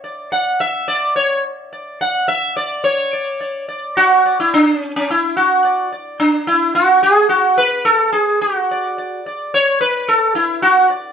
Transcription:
sitar
0.04 D5
0.32 F#5
0.60 E5
0.88 D5
1.16 C#5
1.73 D5
2.01 F#5
2.28 E5
2.57 D5
2.84 C#5
3.13 D5
3.41 D5
3.69 D5
3.97 F#4
4.26 D5
4.40 E4
4.54 D4
4.76 C#4
4.96 C#4
5.10 E4
5.37 F#4
5.65 D5
5.92 D5
6.20 D4
6.47 E4
6.75 F#4
7.03 G#4
7.29 F#4
7.58 B4
7.85 A4
8.13 G#4
8.41 F#4
8.71 D5
8.98 D5
9.26 D5
9.54 C#5
9.81 B4
10.09 A4
10.35 E4
10.62 F#4
10.90 D5

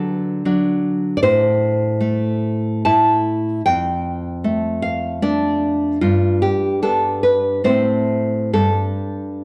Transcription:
nylon-string guitar
Already playing: D3 F#3 A4
0.45 F#3 D4
1.17 D5
1.23 A2 C5
2.01 A3
2.85 A3 E4 A5
3.66 F2 G5
4.44 A3
4.82 F5
5.22 A3 D4 D5
6.01 G2 F4
6.42 G4
6.82 B3 D4 A4
7.23 B4
7.64 A2 A3 C4 C5
8.53 G2 A4

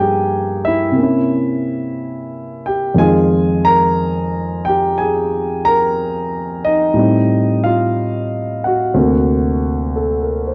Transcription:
grand piano
Already playing: G2 F3 A#3 C#4 G#4 G5 G#5
0.00 G4
0.65 E4 E5
0.92 C3 A#3
0.99 C#4 E4
2.66 G4 G5
2.95 F2 D#3 G#3 G#5
3.00 F4 G#4
3.65 A#4 A#5
4.65 G4 G5
4.98 G#4 G#5
5.65 A#4 A#5
6.64 D#4 D#5
6.94 A2 G3 C4
6.99 D#4
7.64 F4 F5
8.64 F#4 F#5
8.94 D2 C3 A#3
8.99 F#4
9.96 A4
10.21 A#4
10.47 C5

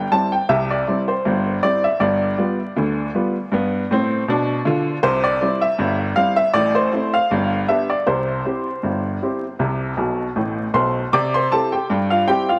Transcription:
upright piano
0.11 G3 C4 E4 A5
0.32 G5
0.49 C2 C3 E5
0.71 D5
0.88 G3 C4 E4
1.08 C5
1.25 G1 G2
1.63 G3 C4 E4 D5
1.84 E5
2.00 G1 G2 D5
2.38 G3 B3 F4
2.77 D2 D3
3.15 G3 B3 F4
3.52 G2 B3
3.91 A2 C4
4.28 B2 D4
4.65 D3 F4
5.03 C2 C3 C5
5.24 D5
5.41 G3 C4 E4
5.61 E5
5.78 G1 G2
6.16 G3 C4 E4 F5
6.36 E5
6.54 A1 A2 D5
6.75 C5
6.93 A3 C4 E4
7.14 F5
7.31 G1 G2
7.68 B3 D4 G4 E5
7.90 D5
8.07 C2 C3 C5
8.45 C4 E4 G4
8.83 G1 G2
9.22 C4 E4 G4
9.59 C2 C3
9.97 B1 B2
10.36 A1 A2
10.74 B1 B2 C5 C6
11.13 C3 D5 D6
11.34 C5 C6
11.52 C4 E4 G4 A4 A5
11.72 G4 G5
11.90 G2
12.10 F4 F5
12.27 C4 E4 G4 G5
12.49 F4 F5

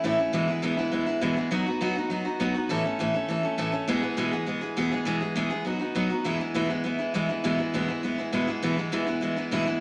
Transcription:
steel-string acoustic guitar
0.04 A2 E3 A3 C#4 E4
0.18 A3 C#4 E4
0.33 E2 B2 E3 G#3 B3 E4
0.48 E3 G#3 B3 E4
0.62 E2 B2 E3 G#3 B3 E4
0.77 E3 G#3 B3 E4
0.92 E3 G#3 B3 E4
1.06 E3 G#3 B3 E4
1.21 E2 B2 E3 G#3 B3 E4
1.36 E3 G#3 B3 E4
1.51 B2 F#3 B3 D#4 F#4
1.66 B3 D#4 F#4
1.81 B2 F#3 B3 D#4 F#4
1.96 B3 D#4 F#4
2.10 F#3 B3 D#4 F#4
2.25 B3 D#4 F#4
2.40 B2 F#3 B3 D#4 F#4
2.54 B3 D#4 F#4
2.69 A2 E3 A3 C#4 A4
2.84 A3 C#4 A4
2.99 A2 E3 A3 C#4 A4
3.14 A3 C#4 A4
3.28 E3 A3 C#4 A4
3.43 A3 C#4 A4
3.58 A2 E3 A3 C#4 A4
3.72 A3 C#4 A4
3.88 E2 B2 E3 G#3 B3 G#4
4.02 E3 G#3 B3 G#4
4.17 E2 B2 E3 G#3 B3 G#4
4.32 E3 G#3 B3 G#4
4.46 E3 G#3 B3 G#4
4.61 E3 G#3 B3 G#4
4.77 E2 B2 E3 G#3 B3 G#4
4.92 E3 G#3 B3 G#4
5.05 E2 B2 E3 G#3 B3 G#4
5.21 E3 G#3 B3 G#4
5.36 E2 B2 E3 G#3 B3 G#4
5.50 E3 G#3 B3 G#4
5.65 F#3 B3 D#4 F#4
5.79 B3 D#4 F#4
5.95 B2 F#3 B3 D#4 F#4
6.10 B3 D#4 F#4
6.24 E2 B2 E3 G#3 B3 E4
6.40 E3 G#3 B3 E4
6.54 E2 B2 E3 G#3 B3 E4
6.69 E3 G#3 B3 E4
6.84 E3 G#3 B3 E4
6.99 E3 G#3 B3 E4
7.14 E2 B2 E3 G#3 B3 E4
7.29 E3 G#3 B3 E4
7.44 E2 B2 E3 G#3 B3 E4
7.58 E3 G#3 B3 E4
7.74 E2 B2 E3 G#3 B3 E4
7.88 E3 G#3 B3 E4
8.03 E3 G#3 B3 E4
8.18 E3 G#3 B3 E4
8.32 E2 B2 E3 G#3 B3 E4
8.47 E3 G#3 B3 E4
8.62 E2 B2 E3 G#3 B3 E4
8.77 E3 G#3 B3 E4
8.92 E2 B2 E3 G#3 B3 E4
9.07 E3 G#3 B3 E4
9.21 E3 G#3 B3 E4
9.37 E3 G#3 B3 E4
9.51 E2 B2 E3 G#3 B3 E4
9.65 E3 G#3 B3 E4

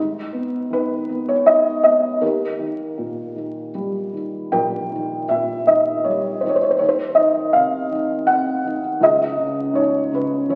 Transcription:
felt piano
Already playing: G#2
0.33 B3
0.70 D#3 B4
1.09 B3
1.29 C#5
1.46 D#4 D#5
1.84 B3 D#5
2.21 D#2 G4 A#4
2.59 D#3
2.98 A#2
3.36 D#3
3.75 G3
4.14 D#3
4.52 A#1 A#4 G5
4.91 D#3
5.29 A#2 E5
5.67 D#3 D#5
6.04 G3 C#5
6.41 D#3 C5
6.49 C#5
6.56 C5
6.63 C#5
6.71 C5
6.79 D#2 C#5
6.89 C5
7.15 D#3 D#5
7.53 C3 F5
7.91 D#3
8.27 C4 F#5
8.65 D#3
9.01 C#2 G#4 D#5
9.38 C#3
9.73 G#2 C#5
10.11 C#3 B4
10.49 E3 E4 C#5

